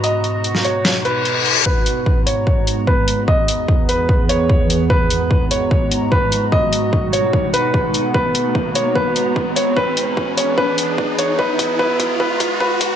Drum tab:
HH |x-x-x-x-x-x-x-x-|--x---x---x---x-|--x---x---x---x-|--x---x---x---x-|
SD |-----o--o-------|----------------|----------------|----------------|
BD |----------------|o---o---o---o---|o---o---o---o---|o---o---o---o---|

HH |--x---x---x---x-|--x---x---x---o-|--x---x---x---o-|--x---x---x---o-|
SD |----------------|----------------|----------------|----------------|
BD |o---o---o---o---|o---o---o---o---|o---o---o---o---|o-o-o-o-o-o-o-o-|